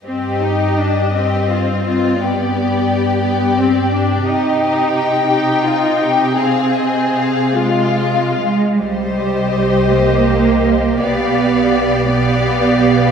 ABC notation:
X:1
M:6/8
L:1/8
Q:3/8=55
K:Cm
V:1 name="Violin section"
e6 | d3 d3 | e e g4 | f e f f2 z |
e6 | f3 f3 |]
V:2 name="Violin section"
G3 G F F | G6 | G3 G F G | A3 F2 z |
c6 | d3 d3 |]
V:3 name="Viola section"
C E D C3 | =B,3 B, C D | E3 E3 | C3 A,2 z |
G6 | G3 G3 |]
V:4 name="Cello section" clef=bass
G,,6- | G,,6 | C,6- | C,4- C, A, |
G,3 B,3 | =B,3 B,3 |]
V:5 name="Double bass section" clef=bass
z6 | z6 | z6 | z6 |
C,,6 | =B,,,6 |]